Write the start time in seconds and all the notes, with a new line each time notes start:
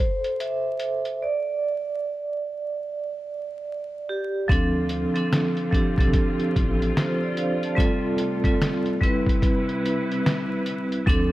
Already playing: C5
0.24 closed hi-hat
0.40 E5, closed hi-hat
0.79 closed hi-hat
1.05 closed hi-hat
1.22 D5
4.09 G4
4.48 D2 D3 F3 C4 D4 F4 A4, kick, closed hi-hat
4.89 closed hi-hat
5.14 F3 C4 D4 A4, closed hi-hat
5.33 snare, closed hi-hat
5.57 closed hi-hat
5.71 F3 C4 D4 G4, kick, closed hi-hat
5.98 B1 F3 C4 D4, kick, closed hi-hat
6.03 A4
6.13 kick, closed hi-hat
6.40 closed hi-hat
6.56 A1, kick, closed hi-hat
6.82 closed hi-hat
6.97 F4 C5, snare, closed hi-hat
7.23 A4 D5
7.37 C5 F5, closed hi-hat
7.63 D5 A5, closed hi-hat
7.75 C3 G3 A3 C4 F4 A4, kick
7.80 closed hi-hat
8.18 closed hi-hat
8.44 G3 C4 F4, kick, closed hi-hat
8.48 A4
8.62 snare, closed hi-hat
8.86 closed hi-hat
9.01 C3 G3 C4 E4 B4, kick, closed hi-hat
9.26 kick, closed hi-hat
9.42 kick, closed hi-hat
9.69 closed hi-hat
9.86 closed hi-hat
10.12 closed hi-hat
10.26 snare, closed hi-hat
10.66 closed hi-hat
10.92 closed hi-hat
11.06 D2 D3 F3 C4 D4 A4, kick, closed hi-hat